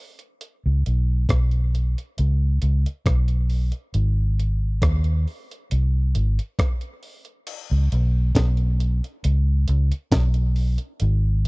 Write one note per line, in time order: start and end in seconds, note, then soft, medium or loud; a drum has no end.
0.19 closed hi-hat medium
0.41 closed hi-hat medium
0.66 0.85 C#2 medium
0.86 1.28 B1 medium
0.86 closed hi-hat medium
1.29 1.94 B1 medium
1.29 kick loud
1.29 cross-stick loud
1.29 closed hi-hat medium
1.51 closed hi-hat soft
1.75 closed hi-hat medium
1.98 closed hi-hat medium
2.18 2.61 C#2 medium
2.18 closed hi-hat medium
2.62 2.84 C#2 medium
2.62 closed hi-hat medium
2.86 closed hi-hat medium
3.06 3.70 B1 medium
3.06 kick loud
3.06 cross-stick loud
3.06 closed hi-hat medium
3.28 closed hi-hat medium
3.50 open hi-hat medium
3.72 closed hi-hat medium
3.94 4.79 G#1 medium
3.94 closed hi-hat medium
4.39 closed hi-hat medium
4.82 5.25 D#2 loud
4.82 kick loud
4.82 cross-stick loud
4.82 closed hi-hat medium
5.04 closed hi-hat soft
5.28 open hi-hat soft
5.51 closed hi-hat medium
5.71 6.13 C2 medium
5.71 closed hi-hat medium
6.15 6.37 G#1 medium
6.15 closed hi-hat medium
6.39 closed hi-hat medium
6.59 kick loud
6.59 cross-stick loud
6.59 closed hi-hat medium
6.81 closed hi-hat soft
7.03 open hi-hat medium
7.25 closed hi-hat soft
7.47 closed hi-hat medium
7.47 crash medium
7.71 7.91 C#2 loud
7.92 8.34 B1 medium
7.92 closed hi-hat medium
8.35 9.00 B1 loud
8.35 kick loud
8.35 snare loud
8.35 closed hi-hat loud
8.57 closed hi-hat soft
8.80 closed hi-hat medium
9.04 closed hi-hat soft
9.24 9.66 C#2 loud
9.24 closed hi-hat medium
9.68 9.90 C#2 loud
9.68 closed hi-hat medium
9.92 closed hi-hat medium
10.12 10.76 B1 loud
10.12 kick loud
10.12 snare loud
10.12 closed hi-hat medium
10.34 closed hi-hat medium
10.56 open hi-hat medium
10.78 closed hi-hat medium
11.00 11.48 G#1 loud
11.00 closed hi-hat medium